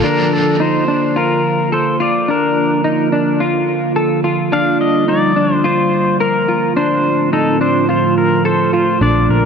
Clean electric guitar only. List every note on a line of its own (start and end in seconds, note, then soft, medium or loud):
0.04 0.60 D4 medium
0.60 0.88 D#4 medium
0.88 1.16 D4 medium
1.16 1.72 F4 medium
1.72 2.00 A4 medium
2.00 2.28 F4 medium
2.28 2.84 D4 medium
2.84 3.12 D#4 medium
3.12 3.40 D4 medium
3.40 3.96 F4 medium
3.96 4.24 A4 medium
4.24 4.52 F4 medium
4.52 5.08 D4 medium
5.08 5.36 D#4 medium
5.36 5.64 D4 medium
5.64 6.20 F4 medium
6.20 6.48 A#4 medium
6.48 6.76 F4 medium
6.76 7.32 D4 medium
7.33 7.61 D#4 medium
7.61 7.88 D4 medium
7.89 8.45 F4 medium
8.45 8.73 A4 medium
8.73 9.01 F4 medium
9.01 9.45 D4 medium